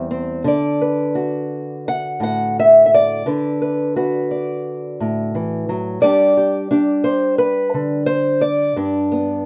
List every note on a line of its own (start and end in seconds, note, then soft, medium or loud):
0.00 0.46 E2 medium
0.00 0.42 G3 medium
0.00 0.47 E4 medium
0.11 0.42 C4 soft
0.44 3.25 D3 medium
0.44 1.87 D5 medium
0.81 3.26 B4 soft
1.15 3.22 F#4 medium
1.88 2.22 F#5 medium
2.20 3.26 A2 medium
2.20 2.58 F#5 medium
2.60 2.85 E5 medium
2.86 2.92 E5 soft
2.94 4.30 D5 medium
3.26 5.33 D3 medium
3.26 3.61 B4 soft
3.62 3.96 B4 soft
3.96 5.98 F#4 medium
3.96 7.04 B4 soft
4.31 6.01 D5 soft
5.00 6.02 A2 soft
5.35 5.69 E3 medium
5.69 6.03 F#3 medium
6.02 8.74 G3 medium
6.02 6.70 D4 soft
6.02 6.37 G4 soft
6.02 7.74 D5 medium
6.37 6.71 G4 soft
6.71 8.77 D4 medium
6.71 8.74 G4 soft
7.04 7.38 C5 medium
7.38 8.06 B4 medium
7.74 8.74 D3 medium
8.06 8.42 C5 medium
8.41 9.46 D5 medium
8.76 9.46 G2 medium
8.76 9.46 D4 soft
9.12 9.46 B3 soft